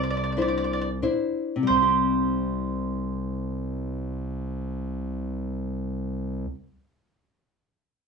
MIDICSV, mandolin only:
0, 0, Header, 1, 2, 480
1, 0, Start_track
1, 0, Key_signature, 0, "major"
1, 0, Tempo, 635593
1, 771, Tempo, 669643
1, 1250, Time_signature, 3, 2, 24, 8
1, 5827, End_track
2, 0, Start_track
2, 0, Title_t, "Mandolin"
2, 0, Program_c, 0, 25
2, 26, Note_on_c, 0, 74, 65
2, 66, Note_off_c, 0, 74, 0
2, 78, Note_on_c, 0, 74, 64
2, 119, Note_off_c, 0, 74, 0
2, 128, Note_on_c, 0, 74, 54
2, 170, Note_off_c, 0, 74, 0
2, 179, Note_on_c, 0, 74, 57
2, 232, Note_off_c, 0, 74, 0
2, 244, Note_on_c, 0, 74, 46
2, 295, Note_off_c, 0, 74, 0
2, 315, Note_on_c, 0, 74, 70
2, 356, Note_off_c, 0, 74, 0
2, 365, Note_on_c, 0, 74, 60
2, 417, Note_off_c, 0, 74, 0
2, 435, Note_on_c, 0, 74, 67
2, 476, Note_off_c, 0, 74, 0
2, 485, Note_on_c, 0, 74, 59
2, 539, Note_off_c, 0, 74, 0
2, 553, Note_on_c, 0, 74, 66
2, 604, Note_off_c, 0, 74, 0
2, 615, Note_on_c, 0, 74, 57
2, 667, Note_off_c, 0, 74, 0
2, 1237, Note_on_c, 0, 72, 83
2, 4760, Note_off_c, 0, 72, 0
2, 5827, End_track
0, 0, End_of_file